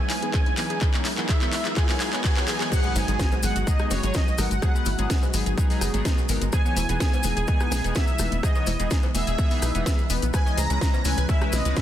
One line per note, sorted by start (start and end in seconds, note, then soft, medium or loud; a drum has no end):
0.00 0.12 E3 medium
0.00 2.68 F#3 medium
0.00 2.68 G#3 medium
0.00 0.12 B3 medium
0.00 2.68 B3 medium
0.00 0.12 D#4 medium
0.00 2.68 E4 medium
0.00 0.79 B4 medium
0.00 0.12 C#5 medium
0.00 0.33 G#5 loud
0.00 riser medium
0.10 0.18 E4 medium
0.10 clap medium
0.10 open hi-hat loud
0.22 0.32 E3 medium
0.22 0.32 B3 medium
0.22 0.29 B3 medium
0.22 0.32 D#4 medium
0.22 0.32 G#4 medium
0.22 closed hi-hat medium
0.34 0.48 E3 medium
0.34 0.48 B3 medium
0.34 0.48 D#4 medium
0.34 0.48 G#4 medium
0.34 0.42 G#4 medium
0.34 0.78 G#5 loud
0.34 kick loud
0.34 clap medium
0.34 closed hi-hat medium
0.46 0.53 B3 medium
0.46 closed hi-hat soft
0.58 0.78 E3 medium
0.58 0.78 B3 medium
0.58 0.65 B3 medium
0.58 0.78 D#4 medium
0.58 0.78 G#4 medium
0.58 clap medium
0.58 open hi-hat loud
0.70 0.77 G#4 medium
0.70 closed hi-hat medium
0.81 0.91 E3 medium
0.81 0.91 B3 medium
0.81 0.91 D#4 medium
0.81 0.89 G#4 loud
0.81 0.91 G#4 loud
0.81 2.70 A#4 medium
0.81 kick loud
0.81 clap medium
0.81 closed hi-hat medium
0.94 1.07 E3 medium
0.94 1.01 B3 medium
0.94 1.07 B3 medium
0.94 1.07 D#4 medium
0.94 1.07 C#5 medium
0.94 clap medium
0.94 closed hi-hat soft
1.05 1.13 E4 medium
1.05 clap medium
1.05 open hi-hat loud
1.18 1.27 E3 medium
1.18 1.25 B3 medium
1.18 1.27 B3 medium
1.18 1.27 D#4 medium
1.18 1.27 G#4 medium
1.18 clap medium
1.18 closed hi-hat soft
1.29 1.39 E3 medium
1.29 1.39 B3 medium
1.29 1.39 D#4 medium
1.29 1.37 G#4 loud
1.29 1.39 G#4 medium
1.29 1.73 E5 loud
1.29 kick loud
1.29 clap loud
1.29 closed hi-hat medium
1.41 1.55 E3 medium
1.41 1.55 B3 medium
1.41 1.49 B3 medium
1.41 1.55 D#4 medium
1.41 1.55 C#5 medium
1.41 clap medium
1.41 closed hi-hat soft
1.53 1.61 E4 medium
1.53 clap loud
1.53 open hi-hat loud
1.65 1.75 E3 medium
1.65 1.72 B3 medium
1.65 1.75 B3 medium
1.65 1.75 D#4 medium
1.65 1.75 G#4 medium
1.65 clap medium
1.65 closed hi-hat medium
1.77 1.86 E3 medium
1.77 1.86 B3 medium
1.77 1.86 D#4 medium
1.77 1.84 G#4 loud
1.77 1.86 G#4 loud
1.77 2.21 G#5 loud
1.77 kick loud
1.77 clap loud
1.77 closed hi-hat medium
1.89 1.99 E3 medium
1.89 1.96 B3 medium
1.89 1.99 B3 medium
1.89 1.99 D#4 medium
1.89 1.99 C#5 medium
1.89 clap medium
1.89 open hi-hat medium
2.00 2.10 E3 medium
2.00 2.10 B3 medium
2.00 2.10 D#4 medium
2.00 2.08 G#4 loud
2.00 2.10 G#4 loud
2.00 clap loud
2.00 open hi-hat loud
2.13 2.22 E3 medium
2.13 2.20 B3 medium
2.13 2.22 B3 medium
2.13 2.22 D#4 medium
2.13 2.22 C#5 loud
2.13 clap medium
2.13 closed hi-hat medium
2.24 2.34 E3 medium
2.24 2.34 B3 medium
2.24 2.34 D#4 medium
2.24 2.34 G#4 loud
2.24 2.32 G#4 loud
2.24 2.68 G#5 loud
2.24 kick loud
2.24 clap loud
2.24 closed hi-hat medium
2.37 2.46 E3 medium
2.37 2.44 B3 medium
2.37 2.46 B3 medium
2.37 2.46 D#4 medium
2.37 2.46 C#5 loud
2.37 clap loud
2.37 closed hi-hat soft
2.48 2.58 E3 medium
2.48 2.58 B3 medium
2.48 2.58 D#4 medium
2.48 2.58 G#4 loud
2.48 2.56 G#4 loud
2.48 clap loud
2.48 open hi-hat loud
2.61 2.70 E3 medium
2.61 2.68 B3 medium
2.61 2.70 B3 medium
2.61 2.70 D#4 medium
2.61 2.70 C#5 loud
2.61 clap loud
2.61 closed hi-hat medium
2.72 10.30 B2 medium
2.72 6.49 F#3 medium
2.72 2.81 F#3 medium
2.72 11.82 G#3 medium
2.72 11.82 B3 medium
2.72 2.81 B3 medium
2.72 2.81 D#4 medium
2.72 6.49 F#4 medium
2.72 2.80 F#4 loud
2.72 2.81 G#4 loud
2.72 2.96 F#5 loud
2.72 kick loud
2.72 cross-stick medium
2.72 closed hi-hat medium
2.72 crash loud
2.72 cowbell medium
2.72 impact medium
2.72 maracas medium
2.83 2.98 F#3 medium
2.83 2.91 G#3 medium
2.83 2.98 B3 medium
2.83 2.98 D#4 medium
2.83 2.98 B4 medium
2.83 maracas soft
2.96 3.05 G#1 medium
2.96 3.03 D#4 medium
2.96 3.45 G#5 loud
2.96 open hi-hat loud
2.96 cowbell medium
2.96 high conga medium
2.96 maracas medium
3.08 3.17 G#1 medium
3.08 3.18 F#3 medium
3.08 3.15 G#3 medium
3.08 3.18 B3 medium
3.08 3.18 D#4 medium
3.08 3.18 G#4 loud
3.08 closed hi-hat medium
3.08 maracas soft
3.19 3.34 F#3 medium
3.19 3.34 B3 medium
3.19 3.34 D#4 medium
3.19 3.27 F#4 loud
3.19 3.34 G#4 medium
3.19 kick loud
3.19 snare loud
3.19 closed hi-hat medium
3.19 maracas soft
3.32 3.39 G#3 medium
3.32 cowbell medium
3.32 maracas soft
3.43 3.53 G#1 loud
3.43 3.64 F#3 medium
3.43 3.51 G#3 medium
3.43 3.64 B3 medium
3.43 3.64 D#4 medium
3.43 3.64 G#4 medium
3.43 3.65 F#5 loud
3.43 open hi-hat loud
3.43 high conga medium
3.43 maracas loud
3.56 3.65 G#1 medium
3.56 3.63 F#4 medium
3.56 closed hi-hat medium
3.56 maracas soft
3.67 3.78 F#3 loud
3.67 3.75 G#3 medium
3.67 3.78 B3 medium
3.67 3.78 D#4 medium
3.67 3.78 G#4 loud
3.67 3.92 D#5 loud
3.67 kick loud
3.67 closed hi-hat medium
3.67 maracas medium
3.79 4.00 F#3 loud
3.79 3.87 G#3 medium
3.79 4.00 B3 medium
3.79 4.00 D#4 medium
3.79 4.00 G#4 loud
3.79 cross-stick medium
3.79 maracas soft
3.91 4.01 F#1 loud
3.91 3.99 F#4 medium
3.91 4.13 C#5 medium
3.91 snare medium
3.91 open hi-hat loud
3.91 high conga loud
3.91 maracas medium
4.03 4.12 G#1 medium
4.03 4.13 F#3 loud
4.03 4.10 G#3 medium
4.03 4.13 B3 medium
4.03 4.13 D#4 medium
4.03 4.13 G#4 loud
4.03 closed hi-hat medium
4.03 maracas soft
4.14 4.29 F#3 medium
4.14 4.23 G#3 medium
4.14 4.29 B3 medium
4.14 4.29 D#4 medium
4.14 4.29 G#4 medium
4.14 4.39 D#5 medium
4.14 kick loud
4.14 snare loud
4.14 closed hi-hat medium
4.14 maracas soft
4.28 maracas soft
4.38 4.48 G#1 loud
4.38 4.53 F#3 medium
4.38 4.46 G#3 medium
4.38 4.53 B3 medium
4.38 4.53 D#4 medium
4.38 4.53 A#4 medium
4.38 5.30 F#5 loud
4.38 cross-stick medium
4.38 open hi-hat loud
4.38 high conga loud
4.38 maracas medium
4.51 4.60 G#1 medium
4.51 4.58 G#3 medium
4.51 closed hi-hat medium
4.51 maracas soft
4.62 4.72 F#3 medium
4.62 4.72 B3 medium
4.62 4.72 D#4 medium
4.62 4.72 G#4 loud
4.62 4.70 G#4 loud
4.62 kick loud
4.62 cross-stick medium
4.62 closed hi-hat medium
4.62 cowbell medium
4.62 maracas medium
4.75 4.88 F#3 medium
4.75 4.82 G#3 medium
4.75 4.88 B3 medium
4.75 4.88 D#4 medium
4.75 4.88 B4 medium
4.75 maracas soft
4.86 4.96 G#1 loud
4.86 4.94 E4 medium
4.86 open hi-hat loud
4.86 high conga medium
4.86 maracas medium
4.98 5.08 G#1 medium
4.98 5.08 F#3 medium
4.98 5.06 G#3 medium
4.98 5.08 B3 medium
4.98 5.08 D#4 medium
4.98 5.08 G#4 loud
4.98 closed hi-hat medium
4.98 maracas soft
5.10 5.25 F#3 medium
5.10 5.25 B3 medium
5.10 5.25 D#4 medium
5.10 5.25 G#4 medium
5.10 5.18 G#4 medium
5.10 kick loud
5.10 snare loud
5.10 closed hi-hat medium
5.10 maracas medium
5.23 5.30 G#3 medium
5.23 cowbell medium
5.23 maracas soft
5.34 5.44 G#1 medium
5.34 5.54 F#3 medium
5.34 5.42 G#3 medium
5.34 5.54 B3 medium
5.34 5.54 D#4 medium
5.34 5.54 G#4 medium
5.34 open hi-hat loud
5.34 maracas medium
5.46 5.55 G#1 medium
5.46 5.53 G#4 loud
5.46 closed hi-hat medium
5.46 maracas soft
5.58 5.68 F#3 loud
5.58 5.65 G#3 medium
5.58 5.68 B3 medium
5.58 5.68 D#4 medium
5.58 5.68 G#4 loud
5.58 kick loud
5.58 closed hi-hat medium
5.58 maracas medium
5.70 5.91 F#3 loud
5.70 5.77 G#3 medium
5.70 5.91 B3 medium
5.70 5.91 D#4 medium
5.70 5.91 G#4 loud
5.70 open hi-hat medium
5.70 maracas soft
5.81 5.91 F#1 medium
5.81 5.89 G#4 loud
5.81 cross-stick medium
5.81 open hi-hat loud
5.81 maracas loud
5.94 6.03 G#1 medium
5.94 6.03 F#3 medium
5.94 6.01 G#3 medium
5.94 6.03 B3 medium
5.94 6.03 D#4 medium
5.94 6.03 G#4 loud
5.94 closed hi-hat medium
5.94 high conga medium
5.94 maracas soft
6.05 6.20 F#3 medium
6.05 6.13 G#3 medium
6.05 6.20 B3 medium
6.05 6.20 D#4 medium
6.05 6.20 G#4 medium
6.05 kick loud
6.05 snare loud
6.05 closed hi-hat medium
6.05 maracas medium
6.18 maracas soft
6.29 6.39 G#1 loud
6.29 6.44 F#3 medium
6.29 6.37 G#3 medium
6.29 6.44 B3 medium
6.29 6.44 D#4 medium
6.29 6.44 A#4 medium
6.29 open hi-hat loud
6.29 maracas medium
6.41 6.50 G#1 medium
6.41 6.49 G#3 medium
6.41 closed hi-hat medium
6.41 maracas soft
6.52 6.62 E3 medium
6.52 11.82 E3 medium
6.52 6.62 B3 medium
6.52 6.62 D#4 medium
6.52 11.82 E4 medium
6.52 6.61 G#4 loud
6.52 6.62 G#4 loud
6.52 6.97 G#5 loud
6.52 kick loud
6.52 cross-stick medium
6.52 closed hi-hat medium
6.52 cowbell medium
6.52 maracas medium
6.65 6.79 E3 medium
6.65 6.72 B3 medium
6.65 6.79 B3 medium
6.65 6.79 D#4 medium
6.65 6.79 C#5 medium
6.65 maracas soft
6.76 6.86 E1 loud
6.76 6.84 E4 medium
6.76 open hi-hat loud
6.76 cowbell medium
6.76 high conga medium
6.76 maracas loud
6.89 6.98 E1 medium
6.89 6.99 E3 medium
6.89 6.99 B3 medium
6.89 6.96 B3 medium
6.89 6.99 D#4 medium
6.89 6.99 G#4 loud
6.89 closed hi-hat medium
6.89 maracas soft
7.00 7.15 E3 medium
7.00 7.15 B3 medium
7.00 7.15 D#4 medium
7.00 7.15 G#4 medium
7.00 7.08 G#4 loud
7.00 7.47 G#5 loud
7.00 kick loud
7.00 snare loud
7.00 closed hi-hat medium
7.00 maracas medium
7.13 7.20 B3 medium
7.13 cowbell loud
7.13 maracas soft
7.23 7.34 E1 loud
7.23 7.45 E3 medium
7.23 7.45 B3 medium
7.23 7.32 B3 medium
7.23 7.45 D#4 medium
7.23 7.45 G#4 medium
7.23 open hi-hat loud
7.23 high conga loud
7.23 maracas medium
7.37 7.46 E1 medium
7.37 7.44 G#4 loud
7.37 closed hi-hat medium
7.37 maracas soft
7.47 7.59 E3 loud
7.47 7.59 B3 medium
7.47 7.56 B3 medium
7.47 7.59 D#4 medium
7.47 7.59 G#4 loud
7.47 7.92 G#5 loud
7.47 kick loud
7.47 closed hi-hat medium
7.47 maracas medium
7.60 7.81 E3 loud
7.60 7.81 B3 medium
7.60 7.68 B3 medium
7.60 7.81 D#4 medium
7.60 7.81 G#4 loud
7.60 cross-stick medium
7.60 maracas soft
7.71 7.82 B1 loud
7.71 7.80 G#4 medium
7.71 snare medium
7.71 open hi-hat loud
7.71 high conga medium
7.71 maracas loud
7.84 7.93 E1 medium
7.84 7.94 E3 loud
7.84 7.94 B3 medium
7.84 7.91 B3 medium
7.84 7.94 D#4 medium
7.84 7.94 G#4 loud
7.84 closed hi-hat medium
7.84 maracas soft
7.95 8.10 E3 medium
7.95 8.10 B3 medium
7.95 8.03 B3 medium
7.95 8.10 D#4 medium
7.95 8.10 G#4 medium
7.95 8.40 E5 medium
7.95 kick loud
7.95 snare loud
7.95 closed hi-hat medium
7.95 maracas medium
8.07 maracas soft
8.19 8.29 E1 medium
8.19 8.34 E3 medium
8.19 8.34 B3 medium
8.19 8.27 B3 medium
8.19 8.34 D#4 medium
8.19 8.34 B4 medium
8.19 cross-stick medium
8.19 open hi-hat loud
8.19 high conga loud
8.19 maracas loud
8.32 8.41 E1 medium
8.32 8.39 B3 medium
8.32 closed hi-hat medium
8.32 maracas soft
8.43 8.53 E3 medium
8.43 8.53 B3 medium
8.43 8.53 D#4 medium
8.43 8.53 G#4 loud
8.43 8.51 G#4 loud
8.43 8.88 D#5 medium
8.43 kick loud
8.43 cross-stick medium
8.43 closed hi-hat medium
8.43 cowbell medium
8.43 maracas medium
8.55 8.69 E3 medium
8.55 8.69 B3 medium
8.55 8.63 B3 medium
8.55 8.69 D#4 medium
8.55 8.69 C#5 medium
8.55 maracas soft
8.67 8.77 E1 loud
8.67 8.75 E4 medium
8.67 open hi-hat loud
8.67 cowbell medium
8.67 high conga medium
8.67 maracas medium
8.79 8.88 E1 medium
8.79 8.89 E3 medium
8.79 8.89 B3 medium
8.79 8.87 B3 medium
8.79 8.89 D#4 medium
8.79 8.89 G#4 medium
8.79 closed hi-hat medium
8.79 maracas soft
8.91 9.05 E3 medium
8.91 9.05 B3 medium
8.91 9.05 D#4 medium
8.91 9.05 G#4 medium
8.91 8.99 G#4 medium
8.91 kick loud
8.91 snare loud
8.91 closed hi-hat medium
8.91 maracas medium
9.03 9.10 B3 medium
9.03 cowbell medium
9.03 maracas soft
9.15 9.25 E1 medium
9.15 9.35 E3 medium
9.15 9.35 B3 medium
9.15 9.22 B3 medium
9.15 9.35 D#4 medium
9.15 9.35 G#4 medium
9.15 10.06 E5 loud
9.15 open hi-hat loud
9.15 high conga medium
9.15 maracas loud
9.27 9.36 E1 medium
9.27 9.34 G#4 loud
9.27 closed hi-hat medium
9.27 maracas soft
9.38 9.49 E3 loud
9.38 9.49 B3 medium
9.38 9.46 B3 medium
9.38 9.49 D#4 medium
9.38 9.49 G#4 loud
9.38 kick loud
9.38 closed hi-hat medium
9.38 maracas medium
9.51 9.72 E3 loud
9.51 9.72 B3 medium
9.51 9.58 B3 medium
9.51 9.72 D#4 medium
9.51 9.72 G#4 loud
9.51 open hi-hat medium
9.51 maracas soft
9.62 9.72 B1 loud
9.62 9.70 B4 medium
9.62 cross-stick medium
9.62 open hi-hat loud
9.62 maracas loud
9.75 9.84 E1 medium
9.75 9.84 E3 loud
9.75 9.84 B3 medium
9.75 9.82 B3 medium
9.75 9.84 D#4 medium
9.75 9.84 G#4 loud
9.75 closed hi-hat medium
9.75 high conga medium
9.75 maracas soft
9.86 10.01 E3 medium
9.86 9.94 B3 medium
9.86 10.01 B3 medium
9.86 10.01 D#4 medium
9.86 10.01 G#4 medium
9.86 kick loud
9.86 snare loud
9.86 closed hi-hat medium
9.86 maracas medium
9.98 maracas soft
10.10 10.20 E1 loud
10.10 10.25 E3 medium
10.10 10.18 B3 medium
10.10 10.25 B3 medium
10.10 10.25 D#4 medium
10.10 10.25 B4 medium
10.10 open hi-hat loud
10.10 maracas loud
10.22 10.31 B1 medium
10.22 10.29 B3 medium
10.22 closed hi-hat medium
10.22 maracas soft
10.33 11.82 C#3 medium
10.33 10.43 G#3 medium
10.33 10.43 C#4 medium
10.33 10.43 E4 medium
10.33 10.43 B4 loud
10.33 10.42 B4 loud
10.33 10.58 G#5 loud
10.33 kick loud
10.33 cross-stick medium
10.33 closed hi-hat soft
10.33 cowbell medium
10.33 maracas medium
10.46 10.60 G#3 medium
10.46 10.60 C#4 medium
10.46 10.53 C#4 medium
10.46 10.60 E4 medium
10.46 10.60 D#5 loud
10.46 maracas soft
10.57 10.67 C#2 loud
10.57 10.65 G#4 medium
10.57 11.02 A#5 loud
10.57 open hi-hat loud
10.57 cowbell medium
10.57 high conga medium
10.57 maracas medium
10.70 10.79 C#2 medium
10.70 10.80 G#3 medium
10.70 10.77 C#4 medium
10.70 10.80 C#4 medium
10.70 10.80 E4 medium
10.70 10.80 B4 medium
10.70 closed hi-hat medium
10.70 maracas soft
10.81 10.96 G#3 medium
10.81 10.96 C#4 medium
10.81 10.96 E4 medium
10.81 10.89 B4 medium
10.81 10.96 B4 medium
10.81 kick loud
10.81 snare loud
10.81 closed hi-hat medium
10.81 maracas medium
10.94 11.01 C#4 medium
10.94 cowbell medium
10.94 maracas soft
11.05 11.15 C#2 loud
11.05 11.26 G#3 medium
11.05 11.26 C#4 medium
11.05 11.13 C#4 medium
11.05 11.26 E4 medium
11.05 11.26 B4 medium
11.05 11.27 G#5 loud
11.05 open hi-hat loud
11.05 high conga medium
11.05 maracas loud
11.17 11.27 C#2 medium
11.17 11.25 B4 loud
11.17 closed hi-hat medium
11.17 maracas soft
11.29 11.40 G#3 loud
11.29 11.40 C#4 medium
11.29 11.37 C#4 medium
11.29 11.40 E4 medium
11.29 11.40 B4 loud
11.29 11.54 E5 loud
11.29 kick loud
11.29 closed hi-hat medium
11.29 maracas soft
11.41 11.62 G#3 loud
11.41 11.48 C#4 medium
11.41 11.62 C#4 medium
11.41 11.62 E4 medium
11.41 11.62 B4 loud
11.41 cross-stick medium
11.41 maracas soft
11.52 11.63 B1 loud
11.52 11.61 B4 medium
11.52 11.75 D#5 medium
11.52 snare medium
11.52 open hi-hat loud
11.52 high conga medium
11.52 maracas medium
11.65 11.74 C#2 medium
11.65 11.75 G#3 medium
11.65 11.75 C#4 medium
11.65 11.72 C#4 medium
11.65 11.75 E4 medium
11.65 11.75 B4 loud
11.65 closed hi-hat medium
11.65 maracas soft
11.76 11.82 G#3 medium
11.76 11.82 C#4 medium
11.76 11.82 E4 medium
11.76 11.82 B4 loud
11.76 11.82 E5 medium
11.76 kick loud
11.76 snare loud
11.76 closed hi-hat medium
11.76 maracas soft